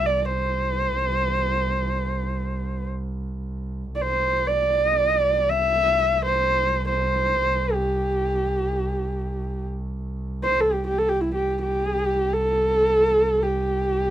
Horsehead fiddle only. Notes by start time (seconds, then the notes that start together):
0.06 D5
0.25 C5
3.95 D5
4.02 C5
4.47 D5
5.49 E5
6.26 C5
6.89 C5
7.73 G4
10.43 C5
10.61 A4
10.73 G4
10.87 G4
10.98 A4
11.09 G4
11.21 E4
11.35 G4
11.62 G4
12.33 A4
13.43 G4